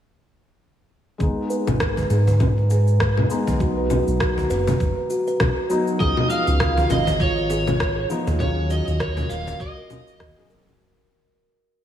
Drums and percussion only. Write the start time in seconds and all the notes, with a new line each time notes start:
1.20 kick, cabasa
1.50 cabasa
1.67 low conga, cabasa
1.80 kick, cross-stick, cabasa
1.97 cajon bass
2.10 cajon slap, cabasa
2.27 cajon bass, cabasa
2.40 kick, low conga, cabasa
2.58 cajon slap
2.70 cajon slap, cabasa
2.88 cabasa
3.00 kick, cross-stick, cabasa
3.17 low conga
3.30 cabasa
3.47 cajon bass, cabasa
3.60 kick, cabasa
3.90 low conga, cabasa
4.08 cabasa
4.20 kick, cross-stick, cabasa
4.38 cajon bass
4.50 cajon slap, cabasa
4.67 cajon bass, low conga, cabasa
4.80 kick, cabasa
5.10 cabasa
5.27 cabasa
5.40 kick, cross-stick, low conga, cabasa
5.70 cajon slap, cabasa
5.87 cabasa
6.00 kick, cabasa
6.17 low conga
6.30 cabasa
6.47 cabasa
6.60 kick, cross-stick, cabasa
6.77 cajon bass
6.90 cajon slap, low conga, cabasa
7.07 cajon bass, cabasa
7.20 kick, cabasa
7.38 cajon slap
7.50 cajon slap, cabasa
7.67 low conga, cabasa
7.80 kick, cross-stick, cabasa
8.10 cabasa
8.27 cajon bass, cabasa
8.40 kick, low conga, cabasa
8.70 cabasa
8.88 cabasa
9.00 kick, cross-stick, cabasa
9.17 cajon bass, low conga
9.30 cajon slap, cabasa
9.47 cajon bass, cabasa
9.60 kick, cabasa
9.90 low conga, cabasa
10.08 cabasa
10.20 kick, cross-stick, cabasa
10.49 cajon slap, cabasa
10.67 low conga, cabasa